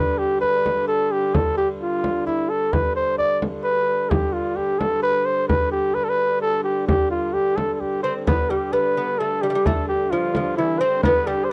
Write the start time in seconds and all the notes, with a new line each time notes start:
Already playing: G2 D3 B4
0.18 G4
0.41 B4, frame drum
0.66 frame drum
0.88 A4
1.12 G4
1.35 A4, frame drum
1.57 G4
1.82 F4
2.04 frame drum
2.27 E4, frame drum
2.50 A4
2.73 G2 D3 B4, frame drum
2.96 C5
3.18 D5, frame drum
3.42 frame drum
3.64 B4
4.10 G4, frame drum
4.33 F4
4.56 G4, frame drum
4.79 A4, frame drum
5.03 B4
5.25 C5
5.48 B4, frame drum
5.72 G4
5.94 B4, frame drum
6.04 A4
6.09 B4
6.41 A4
6.64 G4
6.88 G4, frame drum
7.10 F4
7.33 G4, frame drum
7.56 A4, frame drum
7.74 A4
7.80 G4, frame drum
8.03 C4 C5
8.27 G2 D3 B3 B4, frame drum
8.50 G3 G4
8.73 B3 B4, frame drum
8.97 B3
9.19 A3 A4
9.42 G3 G4
9.50 G3
9.55 G3
9.65 A3 A4, frame drum
9.88 G4
10.10 F3 F4, frame drum
10.35 F3, frame drum
10.57 E3 E4
10.80 C4 C5
11.03 B3 B4, frame drum
11.27 G3 G4
11.44 C5